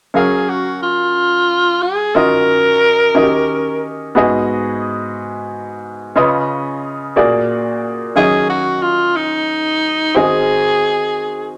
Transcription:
0.14 F#3 C#4 G#4 A#4 F5
0.49 F#4
0.83 F4
1.83 G#4
2.15 D#3 C#4 F4 F#4 A#4 D#5
3.15 D#3 C#4 F#4 A#4 D#5
3.22 G4
4.15 G#2 B3 F#4 G#4 D#5
6.16 C#3 C#4 F4 B4 D#5
7.16 A#2 A#3 F#4 G#4 D5
8.16 D#3 F#3 C#4 G#4 D#5 F5
8.50 F#4
8.82 F4
9.16 D#4
10.15 D#3 C4 F#4 G#4 D#5

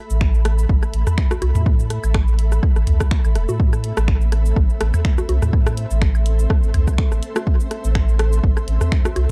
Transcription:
Already playing: A3 A4 E5 B5
0.10 A1, shaker
0.21 finger snap, kick, cross-stick, high woodblock
0.34 shaker
0.45 cross-stick, closed hi-hat
0.58 shaker
0.69 A1, kick
0.83 cross-stick, high woodblock, shaker
0.94 A1, closed hi-hat
1.07 cross-stick, mid tom, shaker
1.18 finger snap, kick
1.31 cross-stick, low bongo, shaker
1.42 C2, closed hi-hat, low bongo, high woodblock
1.55 A2, mid tom, shaker
1.66 kick, cross-stick
1.79 shaker
1.90 cross-stick, closed hi-hat
2.04 A1, high woodblock, shaker
2.14 finger snap, kick, cross-stick
2.28 shaker
2.39 closed hi-hat
2.52 cross-stick, shaker
2.63 kick, high woodblock
2.76 A1, cross-stick, shaker
2.87 C2, closed hi-hat, mid tom
3.00 kick, cross-stick, shaker
3.11 finger snap, kick
3.25 A1, high woodblock, shaker
3.35 E1, cross-stick, closed hi-hat
3.49 A2, low bongo, shaker
3.60 C4, kick
3.73 cross-stick, high woodblock, shaker
3.84 closed hi-hat
3.97 A1, cross-stick, shaker
4.08 finger snap, kick
4.21 shaker
4.32 cross-stick, closed hi-hat, high woodblock
4.46 shaker
4.56 A1, kick, cross-stick
4.70 shaker
4.81 A1, cross-stick, closed hi-hat
4.94 mid tom, high woodblock, shaker
5.05 finger snap, kick
5.18 cross-stick, low bongo, shaker
5.29 C2, closed hi-hat, low bongo
5.40 A2 C6, cross-stick, mid tom, shaker
5.53 kick, high woodblock
5.66 cross-stick, shaker
5.77 closed hi-hat
5.91 A1, shaker
6.02 finger snap, kick, cross-stick
6.15 high woodblock, shaker
6.26 closed hi-hat
6.39 shaker
6.50 kick, cross-stick
6.63 A1, shaker
6.74 C2, closed hi-hat, mid tom, high woodblock
6.87 kick, cross-stick, shaker
6.98 finger snap, kick
7.12 A1, cross-stick, shaker
7.23 closed hi-hat
7.36 cross-stick, low bongo, high woodblock, shaker
7.47 kick
7.60 shaker
7.71 cross-stick, closed hi-hat
7.84 A1, shaker
7.95 finger snap, kick, cross-stick, high woodblock
8.08 shaker
8.19 cross-stick, closed hi-hat
8.33 shaker
8.44 A1, kick
8.57 cross-stick, high woodblock, shaker
8.68 A1, closed hi-hat
8.81 cross-stick, mid tom, shaker
8.92 finger snap, kick
9.05 cross-stick, low bongo, shaker
9.16 C2, closed hi-hat, low bongo, high woodblock

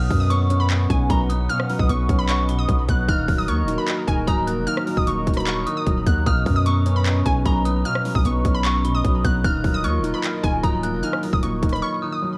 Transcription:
Already playing: B2 C#4 B4 D#5 F#5 D#6 F6
0.10 F#2 F#3, kick, open hi-hat
0.20 D#6
0.30 B3 C#6, closed hi-hat
0.50 C#4, closed hi-hat
0.60 B5
0.70 clap, closed hi-hat
0.90 B1 B2 G#5, kick, closed hi-hat
1.10 B1 F#3 A#5 B5, kick, closed hi-hat
1.29 B3 D#6, closed hi-hat
1.49 B2 F6, closed hi-hat
1.60 cross-stick
1.69 F#3, open hi-hat
1.79 B1 D#6, kick
1.89 B1 B3 C#6, closed hi-hat
2.09 B1 C#4, kick, closed hi-hat
2.19 B5
2.29 C#6, clap, closed hi-hat
2.49 B2 B5, closed hi-hat
2.59 D#6
2.69 B1 F#3, kick, closed hi-hat
2.88 B1 B3 F#6, kick, closed hi-hat
3.08 D#1 D#3 F#4 A#4 A#5 F6 F#6, kick, closed hi-hat
3.28 D#1 F#3, kick, open hi-hat
3.38 D#6
3.48 D#2 A#3 C#6 F6, closed hi-hat
3.63 D#1
3.67 D#4, closed hi-hat
3.78 B5
3.88 clap, closed hi-hat
4.07 D#1 D#3 G#5, kick, closed hi-hat
4.27 C#1 F#3 A#5 D#6, kick, closed hi-hat
4.47 A#3 F#6, closed hi-hat
4.57 F1
4.67 D#3 F6, closed hi-hat
4.77 cross-stick
4.87 F#3, open hi-hat
4.97 D#1 D#6, kick
5.07 D#1 A#3 C#6, closed hi-hat
5.27 D#1 D#4, kick, closed hi-hat
5.34 B5, cross-stick, closed hi-hat
5.40 closed hi-hat
5.47 C#6 F6, clap, closed hi-hat
5.66 D#3 D#6, closed hi-hat
5.77 D#6
5.87 D#1 F#3, kick, closed hi-hat
6.06 D#2 A#3 F#6, kick, closed hi-hat
6.26 B1 B2 C#4 B4 D#6 F6, kick, closed hi-hat
6.46 F#2 F#3, kick, open hi-hat
6.56 D#6
6.66 B3 C#6, closed hi-hat
6.86 C#4, closed hi-hat
6.96 B5
7.06 clap, closed hi-hat
7.26 B1 B2 G#5, kick, closed hi-hat
7.46 B1 F#3 A#5 B5, kick, closed hi-hat
7.65 B3 D#6, closed hi-hat
7.85 B2 F6, closed hi-hat
7.95 cross-stick
8.05 F#3, open hi-hat
8.15 B1 D#6, kick
8.25 B1 B3 C#6, closed hi-hat
8.45 B1 C#4, kick, closed hi-hat
8.54 B5
8.64 C#6, clap, closed hi-hat
8.85 B2 B5, closed hi-hat
8.95 D#6
9.04 B1 F#3, kick, closed hi-hat
9.24 B1 B3 F#6, kick, closed hi-hat
9.44 D#1 D#3 F4 A#4 D#5 F6 F#6, kick, closed hi-hat
9.64 D#1 F#3, kick, open hi-hat
9.74 D#6
9.84 D#2 A#3 C#6 F6, closed hi-hat
9.99 D#1
10.03 D#4, closed hi-hat
10.14 B5
10.24 clap, closed hi-hat
10.43 D#1 D#3 G#5, kick, closed hi-hat
10.63 C#1 F#3 A#5 D#6, kick, closed hi-hat
10.83 A#3 F#6, closed hi-hat
10.93 F1
11.03 D#3 F6, closed hi-hat
11.13 cross-stick
11.23 F#3, open hi-hat
11.33 D#1 D#6, kick
11.43 D#1 A#3 C#6, closed hi-hat
11.62 D#1 D#4, kick, closed hi-hat
11.69 B5, cross-stick, closed hi-hat
11.76 closed hi-hat
11.82 C#6 F6
12.02 D#3 D#6
12.13 D#6
12.22 F#3

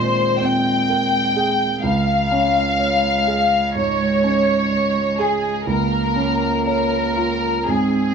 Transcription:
Already playing: D#2 A#2 G#3 C4 G#4 A#4 C5
0.41 C4 G5
0.90 A#4
1.36 G#4
1.83 C#2 G#3 F5
2.31 C#4
2.79 C#5
3.27 G#4
3.74 G#2 C#5
4.24 C#4
4.71 C#5
5.19 G#4
5.67 C#2 A#3 A#4
6.16 C#4
6.66 A#4 C#5
7.16 F4
7.67 G#2 C4 G#4

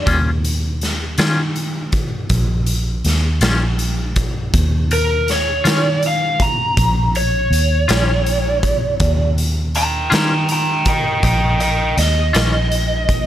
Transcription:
0.06 D#2 D#3 G3 C#4 F4, kick, closed hi-hat
0.45 closed hi-hat
0.81 snare, closed hi-hat
1.18 D#3 G3 C#4 F4, snare, closed hi-hat
1.56 closed hi-hat
1.92 kick, closed hi-hat
2.30 A#1, kick, closed hi-hat
2.66 closed hi-hat
3.04 D#2, snare, closed hi-hat
3.41 A#1 D#3 G3 C#4 F4, snare, closed hi-hat
3.79 closed hi-hat
4.16 kick, closed hi-hat
4.54 D#2, kick, closed hi-hat
4.91 A#4, closed hi-hat
5.28 C#5, snare, closed hi-hat
5.64 D#3 G3 C#4 F4, snare, closed hi-hat
6.03 closed hi-hat
6.07 F5
6.40 A#5, kick, closed hi-hat
6.77 A#1, kick, closed hi-hat
7.15 C#5, closed hi-hat
7.51 D#2, closed hi-hat
7.88 A#1 D#3 G3 C#4 F4, snare, closed hi-hat
8.26 closed hi-hat
8.63 kick, closed hi-hat
9.00 D#2, kick, closed hi-hat
9.38 closed hi-hat
9.75 G5 A#5, closed hi-hat
10.10 D#3 G3 C#4 F4, snare, closed hi-hat
10.14 G5 A#5
10.49 G5, closed hi-hat
10.53 A#5
10.85 D#5 G5, kick, closed hi-hat
11.23 A#1 D#5 G5, kick, closed hi-hat
11.60 D#5 G5, closed hi-hat
11.97 D#2 D#5, snare, closed hi-hat
12.33 A#1 D#3 G3 C#4 F4, snare, closed hi-hat
12.72 closed hi-hat
13.09 kick, closed hi-hat

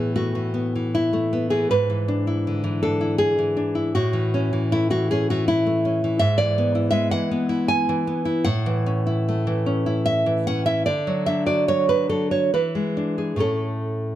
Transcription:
Already playing: A2 E3 B3 G#4
0.16 A3 F#4
0.35 E3
0.54 B3
0.76 E3
0.95 E4
1.13 A3
1.33 B3
1.50 E3 G#4
1.71 G#2 B4
1.90 E3
2.08 D4
2.27 E4
2.47 D3
2.64 E3
2.83 D4 A4
3.01 E4
3.18 G#4
3.38 E3
3.57 D4
3.75 E4
3.95 A2 F#4
4.13 E3
4.34 C#4
4.53 E3
4.72 A3 E4
4.90 E3 F#4
5.11 C#4 G#4
5.30 E3 F#4
5.48 E4
5.66 A3
5.85 C#4
6.04 E3
6.19 G#2 E5
6.38 E3 D5
6.58 B3
6.75 E4
6.91 G#3 E5
7.11 E3 F#5
7.31 B3
7.49 E4
7.68 G#5
7.89 E3
8.07 B3
8.25 E4
8.45 A2 F#5
8.66 E3
8.86 C#4
9.07 E4
9.29 A3
9.47 E3
9.66 C#4
9.86 E4
10.06 E5
10.26 E3
10.47 C#4 F#5
10.66 E4 E5
10.86 D3 D5
11.07 F#3
11.26 D4 E5
11.46 F#4 D5
11.68 F#3 C#5
11.89 D4 B4
12.09 F#3 A4
12.31 F#4 C#5
12.54 E3 B4
12.75 G#3
12.97 D4
13.18 G#4
13.36 A2 A3 C#4
13.40 A4

